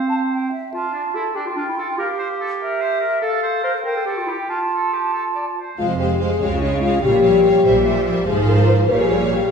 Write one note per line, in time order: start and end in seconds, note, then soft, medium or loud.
0.00 0.50 C4 soft
0.00 0.50 C5 soft
0.09 0.15 A5 soft
0.32 0.52 G5 soft
0.52 0.73 E5 soft
0.74 0.93 F4 soft
0.74 1.17 F4 medium
0.74 1.38 A5 soft
0.93 1.03 D4 soft
1.15 1.24 E4 soft
1.15 1.37 A4 medium
1.35 1.45 D4 soft
1.35 1.46 G4 medium
1.35 1.99 G5 soft
1.47 1.52 F4 medium
1.56 1.61 D4 medium
1.56 1.67 F4 soft
1.68 1.79 E4 medium
1.77 1.98 F4 medium
1.77 1.88 A4 soft
1.98 3.00 G4 medium
1.98 2.08 A#4 medium
1.98 2.36 F5 medium
2.19 2.28 C5 medium
2.41 2.50 A4 medium
2.60 2.83 A#4 medium
2.60 3.25 E5 medium
2.81 3.00 C5 medium
3.01 3.21 A#4 medium
3.21 3.42 A4 medium
3.21 3.61 A4 medium
3.21 3.84 F5 medium
3.43 3.63 C5 medium
3.63 3.73 A#4 medium
3.63 3.74 C5 medium
3.85 3.95 A#4 medium
3.85 4.06 C5 soft
3.85 4.51 G5 soft
3.97 4.01 A4 medium
4.06 4.19 G4 medium
4.06 4.30 A4 soft
4.18 4.26 F4 medium
4.27 4.37 E4 soft
4.27 4.49 G4 soft
4.48 5.55 F4 soft
4.48 4.59 F4 soft
4.48 5.58 A5 soft
4.72 4.95 A4 soft
4.93 5.13 G4 soft
5.14 5.23 A4 soft
5.35 5.45 D5 soft
5.58 5.79 C5 soft
5.78 6.34 F1 soft
5.78 6.34 F2 medium
5.78 5.99 G#3 soft
5.78 5.88 F4 medium
5.78 5.99 C5 soft
5.78 5.97 F5 soft
5.98 6.19 G#3 soft
5.98 6.20 G4 medium
5.98 6.20 C5 soft
5.98 6.18 F5 soft
6.20 6.39 G#3 soft
6.20 6.42 G#4 medium
6.20 6.41 C5 soft
6.20 6.40 F5 soft
6.41 6.96 C#2 soft
6.41 6.96 C#3 medium
6.41 6.60 G#3 soft
6.41 6.46 G4 medium
6.41 6.61 C#5 soft
6.41 6.62 F5 soft
6.53 6.63 F4 medium
6.62 6.81 G#3 soft
6.62 6.73 C#4 medium
6.62 6.83 C#5 soft
6.62 6.81 F5 soft
6.73 6.83 D#4 medium
6.81 7.03 G#3 soft
6.81 7.02 F4 medium
6.81 7.02 C#5 soft
6.81 7.02 F5 soft
7.01 7.57 A#1 medium
7.01 7.57 A#2 medium
7.01 7.22 G3 soft
7.01 8.05 G4 medium
7.01 7.22 C#5 soft
7.01 7.22 F5 soft
7.23 7.42 G3 soft
7.23 7.44 C#5 soft
7.23 7.43 F5 soft
7.44 7.63 G3 soft
7.44 7.65 C#5 soft
7.44 7.64 F5 soft
7.64 8.20 A#1 medium
7.64 8.19 A#2 medium
7.64 7.85 G3 soft
7.64 7.85 C5 soft
7.64 7.84 E5 medium
7.85 8.06 G3 soft
7.85 8.05 C5 soft
7.85 8.05 E5 soft
8.06 8.27 G3 medium
8.06 8.25 C5 soft
8.06 8.26 E5 soft
8.26 8.85 G#1 medium
8.26 8.85 G#2 medium
8.26 8.85 F3 medium
8.26 8.46 G#4 medium
8.26 8.85 C5 medium
8.26 8.85 F5 medium
8.49 8.69 A#4 medium
8.69 8.90 C5 medium
8.89 9.51 A#1 soft
8.89 9.51 A#2 medium
8.89 9.51 G3 medium
8.89 9.00 A#4 medium
8.89 9.51 C#5 soft
8.89 9.51 F5 soft
9.00 9.14 G#4 medium
9.32 9.51 G4 medium